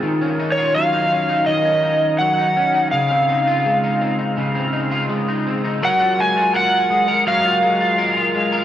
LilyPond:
<<
  \new Staff \with { instrumentName = "Electric slide guitar" } { \time 4/4 \key ges \lydian \tempo 4 = 83 \tuplet 3/2 { r4 des''8 } f''4 ees''4 ges''4 | f''2. r4 | ges''8 aes''8 ges''4 f''2 | }
  \new Staff \with { instrumentName = "Clean electric guitar" } { \time 4/4 \key ges \lydian ees16 des'16 ees'16 f'16 ges16 ees'16 des'16 ees'16 ees16 des'16 ees'8 ges16 ees'16 des'16 ees'16 | des16 c'16 ees'16 f'16 aes16 ees'16 c'16 ees'16 des16 c'16 ees'16 f'16 aes16 ees'16 c'16 ees'16 | <ges bes'>16 f'16 aes16 f'16 bes'8 aes16 bes'16 <ges bes'>16 f'16 aes16 f'16 bes'16 f'16 aes16 bes'16 | }
>>